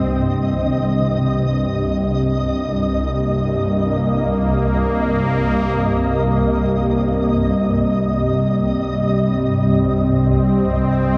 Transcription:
0.00 7.34 C2 medium
0.00 7.34 G2 medium
0.00 11.18 C3 medium
0.00 11.18 G3 medium
0.00 5.09 A#3 medium
0.00 3.13 C4 medium
0.00 7.33 D#5 medium
0.55 1.41 D#3 soft
1.01 6.46 C3 medium
2.85 10.74 A#3 medium
7.35 11.18 C2 medium
7.35 11.18 G2 medium
7.35 11.18 D#5 medium
8.34 11.18 C4 medium

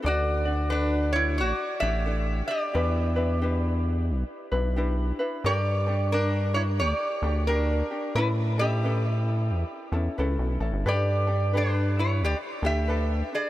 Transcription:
0.02 1.41 D2 medium
0.02 0.45 D4 medium
0.02 0.45 F#4 medium
0.02 0.45 A4 medium
0.02 0.44 D5 medium
0.02 0.72 D5 medium
0.07 0.69 F#4 medium
0.45 0.70 D4 soft
0.45 0.71 F#4 soft
0.45 0.70 D5 soft
0.70 1.82 D4 medium
0.70 1.11 D4 medium
0.70 1.82 F#4 medium
0.70 1.80 A4 soft
0.70 1.12 B4 medium
1.13 1.38 E4 medium
1.13 1.38 C#5 medium
1.38 1.53 A1 loud
1.38 1.79 F#4 medium
1.38 1.49 C#5 medium
1.49 1.80 D5 medium
1.80 2.42 A1 medium
1.80 2.05 D4 soft
1.80 2.45 G4 medium
1.80 2.06 D5 medium
1.80 2.47 E5 medium
2.06 2.49 D4 medium
2.06 2.48 A4 soft
2.06 2.47 D5 medium
2.48 2.73 D4 soft
2.48 3.39 G4 medium
2.48 3.37 D5 medium
2.48 2.74 D5 soft
2.74 4.12 E2 loud
2.74 3.16 D4 medium
2.74 3.16 E4 medium
2.74 3.16 G4 medium
2.74 3.15 B4 medium
3.16 3.40 D4 soft
3.16 3.42 E4 soft
3.16 3.41 B4 medium
3.41 4.53 D4 medium
3.41 4.51 E4 medium
3.41 4.76 G4 medium
3.41 4.50 B4 medium
4.11 4.24 B1 loud
4.52 5.12 B1 medium
4.52 4.76 D4 soft
4.52 4.76 E4 soft
4.52 4.77 B4 medium
4.76 5.19 D4 medium
4.76 5.19 E4 medium
4.76 5.19 G4 medium
4.76 5.18 B4 medium
5.19 5.44 D4 soft
5.19 5.45 E4 soft
5.19 5.44 B4 medium
5.44 6.81 G2 medium
5.44 5.87 D4 medium
5.44 5.87 G4 medium
5.44 6.09 G4 medium
5.44 5.86 A4 medium
5.44 5.87 A#4 medium
5.44 6.13 D5 medium
5.87 6.12 D4 soft
5.87 6.12 G4 soft
5.87 6.12 A4 medium
6.12 7.23 D4 medium
6.12 6.52 D4 medium
6.12 7.22 G4 medium
6.12 6.56 A#4 medium
6.12 7.22 A#4 medium
6.54 6.63 E4 medium
6.54 6.61 C#5 medium
6.80 6.94 D2 medium
6.80 7.44 G4 medium
6.80 6.91 C#5 medium
6.91 7.48 D5 medium
7.22 7.83 D2 loud
7.22 7.47 D4 soft
7.22 7.47 G4 soft
7.22 7.48 A4 soft
7.47 7.90 D4 medium
7.47 8.12 D4 medium
7.47 7.89 G4 medium
7.47 8.15 A#4 medium
7.47 7.90 A#4 medium
7.91 8.16 D4 soft
7.91 8.16 G4 soft
8.15 9.52 A2 loud
8.15 8.58 C#4 medium
8.15 8.58 E4 medium
8.15 8.29 E4 medium
8.15 8.57 A4 medium
8.15 8.27 B4 medium
8.15 8.57 B4 medium
8.58 8.83 C#4 soft
8.58 8.83 E4 soft
8.58 10.58 G4 medium
8.58 8.83 A4 soft
8.58 10.57 E5 loud
8.83 9.93 C#4 medium
8.83 9.92 E4 medium
8.83 9.92 A4 medium
8.83 9.92 B4 medium
9.51 9.64 E2 loud
9.92 10.09 E2 loud
9.92 10.17 C#4 soft
9.92 10.18 E4 medium
9.92 10.17 A4 medium
10.18 10.37 C#2 medium
10.18 10.60 C#4 medium
10.18 10.61 E4 medium
10.18 10.59 A4 medium
10.18 10.60 B4 medium
10.39 10.58 B1 medium
10.60 10.72 A1 medium
10.60 10.86 C#4 soft
10.60 10.86 E4 soft
10.60 10.86 A4 soft
10.73 10.84 G1 medium
10.86 12.23 G2 loud
10.86 11.28 D4 medium
10.86 11.27 G4 medium
10.86 11.51 G4 medium
10.86 11.26 A4 medium
10.86 11.28 B4 medium
10.86 11.56 D5 medium
11.27 11.53 D4 soft
11.27 11.53 G4 soft
11.27 11.53 A4 medium
11.53 12.63 D4 medium
11.53 11.94 D4 medium
11.53 12.62 G4 medium
11.53 12.61 A4 medium
11.53 12.63 B4 medium
11.58 11.99 B4 medium
11.99 12.21 E4 medium
11.99 12.21 C#5 medium
12.21 12.35 D2 loud
12.21 12.35 G4 medium
12.25 12.36 D5 medium
12.62 13.23 D2 loud
12.62 12.87 D4 soft
12.62 12.87 G4 soft
12.62 13.27 G4 medium
12.62 12.88 A4 soft
12.62 13.34 E5 medium
12.88 13.31 D4 medium
12.88 13.31 G4 medium
12.88 13.31 A4 medium
12.88 13.30 B4 medium
13.33 13.50 D4 soft
13.33 13.50 G#4 medium
13.33 13.50 D5 medium

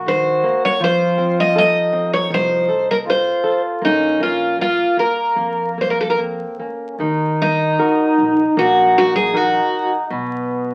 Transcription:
0.00 0.28 A#1 medium
0.00 0.77 F#4 loud
0.06 0.42 D#3 medium
0.06 0.65 C5 medium
0.44 0.80 A#3 medium
0.65 0.81 C#5 medium
0.80 1.78 F2 medium
0.80 2.29 F3 medium
0.80 1.57 F4 loud
0.80 1.40 C5 loud
1.18 1.54 C4 medium
1.40 1.57 D#5 loud
1.56 3.11 D#4 loud
1.56 1.92 A4 medium
1.56 2.13 D#5 loud
1.93 2.29 C4 medium
2.14 2.30 C#5 medium
2.30 3.29 C2 medium
2.30 2.67 F3 medium
2.30 2.90 C5 loud
2.69 3.05 A4 medium
2.91 2.96 A#4 medium
3.06 3.43 C4 soft
3.06 3.84 F4 loud
3.10 3.61 C5 medium
3.44 3.81 A4 soft
3.82 4.82 A#1 medium
3.82 4.19 A#3 medium
3.82 4.61 C#4 medium
3.82 4.22 D#4 medium
4.20 4.57 A#3 medium
4.20 4.57 F4 medium
4.59 4.96 A#3 soft
4.59 6.15 A#3 medium
4.59 4.96 F4 medium
4.97 5.35 A#3 soft
4.97 5.77 A#4 medium
5.36 6.42 F2 medium
5.36 5.75 A#3 soft
5.78 6.17 A#3 soft
5.78 5.90 C5 medium
5.90 5.99 A#4 medium
6.01 6.09 A4 medium
6.10 6.19 A#4 medium
6.18 6.58 A#3 soft
6.18 6.61 C4 medium
6.59 6.98 A#3 soft
6.59 6.96 C#4 medium
6.99 7.76 D#2 medium
6.99 7.76 D#3 medium
6.99 10.07 D#4 loud
7.42 8.54 D#4 medium
7.79 8.41 D#4 soft
7.79 8.42 F#4 soft
7.79 8.42 A#4 soft
8.18 8.43 A#1 medium
8.57 9.57 A#1 loud
8.57 9.32 A#3 medium
8.57 8.97 F#4 medium
8.98 9.15 F#4 medium
9.16 9.37 G#4 medium
9.33 9.95 D#4 soft
9.33 9.95 F#4 soft
9.33 9.93 F#4 medium
9.33 9.96 A#4 medium
10.10 10.74 B1 medium
10.10 10.74 B2 medium
10.10 10.74 B3 loud

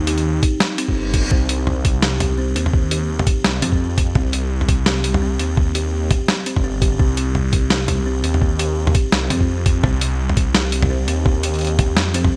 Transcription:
0.00 0.42 D#2 medium
0.07 0.24 G4 medium
0.07 closed hi-hat medium
0.18 closed hi-hat soft
0.43 kick loud
0.43 closed hi-hat medium
0.60 snare loud
0.60 reverse cymbal medium
0.78 0.94 C4 medium
0.78 closed hi-hat medium
0.88 1.31 G1 medium
0.88 kick medium
1.14 kick medium
1.14 closed hi-hat medium
1.31 2.55 C2 loud
1.31 1.48 C4 medium
1.31 kick loud
1.49 closed hi-hat medium
1.67 mid tom medium
1.85 kick loud
1.85 closed hi-hat medium
2.02 2.36 G4 medium
2.02 snare loud
2.20 closed hi-hat medium
2.20 mid tom medium
2.38 2.54 C4 medium
2.56 3.26 D#2 medium
2.56 2.73 C4 medium
2.56 closed hi-hat medium
2.66 mid tom medium
2.73 kick loud
2.91 3.08 G4 medium
2.91 closed hi-hat medium
3.19 mid tom medium
3.27 kick loud
3.27 closed hi-hat medium
3.44 3.64 C2 medium
3.44 snare loud
3.62 4.14 F2 medium
3.62 3.79 C4 loud
3.62 closed hi-hat medium
3.62 mid tom medium
3.72 kick medium
3.98 kick loud
3.98 closed hi-hat medium
4.15 5.39 C2 loud
4.15 4.32 C4 medium
4.15 kick loud
4.15 mid tom medium
4.33 closed hi-hat medium
4.61 mid tom soft
4.69 kick loud
4.69 closed hi-hat medium
4.86 5.20 G4 medium
4.86 snare loud
5.04 closed hi-hat medium
5.14 mid tom medium
5.22 5.38 C4 medium
5.39 6.10 D#2 medium
5.39 5.57 C4 medium
5.39 closed hi-hat medium
5.57 kick loud
5.57 mid tom soft
5.75 5.92 G4 medium
5.75 closed hi-hat medium
6.11 kick loud
6.11 closed hi-hat medium
6.11 mid tom medium
6.28 snare loud
6.46 6.62 C4 medium
6.46 closed hi-hat medium
6.56 6.99 G1 medium
6.56 kick medium
6.56 mid tom medium
6.64 6.80 C4 medium
6.81 6.98 G4 medium
6.81 kick loud
6.81 closed hi-hat medium
6.99 8.23 C2 loud
6.99 7.16 C4 medium
6.99 kick loud
7.17 closed hi-hat medium
7.35 mid tom soft
7.53 kick loud
7.53 closed hi-hat medium
7.70 8.04 G4 medium
7.70 snare loud
7.88 closed hi-hat medium
7.88 mid tom medium
8.06 8.22 C4 medium
8.23 8.94 D#2 medium
8.23 8.41 C4 medium
8.23 closed hi-hat medium
8.34 mid tom medium
8.42 kick loud
8.59 8.76 G4 medium
8.59 closed hi-hat medium
8.87 mid tom medium
8.95 kick loud
8.95 closed hi-hat medium
9.12 9.32 C2 medium
9.12 snare loud
9.30 9.83 F2 medium
9.30 9.47 C4 loud
9.30 closed hi-hat medium
9.30 mid tom medium
9.41 kick medium
9.66 kick loud
9.66 closed hi-hat medium
9.83 11.07 C2 loud
9.83 10.00 C4 medium
9.83 kick loud
9.83 mid tom medium
10.01 closed hi-hat medium
10.29 mid tom medium
10.37 kick loud
10.37 closed hi-hat medium
10.55 10.89 G4 medium
10.55 snare loud
10.72 closed hi-hat medium
10.82 mid tom medium
10.90 11.06 C4 medium
11.08 11.98 D#2 medium
11.08 11.25 C4 medium
11.08 closed hi-hat medium
11.26 kick loud
11.26 mid tom medium
11.43 11.60 G4 medium
11.43 closed hi-hat medium
11.54 closed hi-hat soft
11.55 closed hi-hat soft
11.59 closed hi-hat soft
11.61 closed hi-hat soft
11.65 closed hi-hat soft
11.67 closed hi-hat soft
11.79 kick loud
11.79 closed hi-hat medium
11.79 mid tom medium
11.97 12.31 F2 medium
11.97 snare loud
12.14 12.31 C4 loud
12.14 closed hi-hat medium
12.24 kick medium
12.24 mid tom medium

